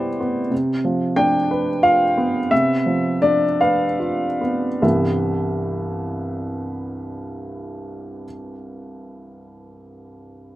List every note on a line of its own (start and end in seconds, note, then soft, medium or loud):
0.00 0.47 C3 soft
0.00 0.53 G3 soft
0.00 0.20 B3 soft
0.00 0.54 E4 soft
0.00 0.39 G4 soft
0.00 0.54 C5 medium
0.00 0.54 D5 medium
0.20 0.52 B3 soft
0.51 2.47 C3 soft
0.85 1.37 F3 soft
1.16 1.69 D4 soft
1.16 1.83 G5 medium
1.51 2.04 B4 soft
1.83 2.37 F4 soft
1.83 2.51 F5 medium
2.17 2.72 B3 soft
2.51 4.79 C3 soft
2.51 3.23 E5 medium
2.86 3.45 F3 soft
3.22 3.84 D4 soft
3.22 3.60 D5 medium
3.61 4.24 B4 soft
3.61 4.41 F5 medium
4.00 4.66 F4 soft
4.41 4.81 B3 soft
4.82 8.24 C2 soft
4.82 8.24 G2 soft
4.82 8.25 E3 soft
4.82 8.24 G3 soft
4.82 8.25 B3 soft
4.82 8.25 E4 soft
4.82 8.25 E5 soft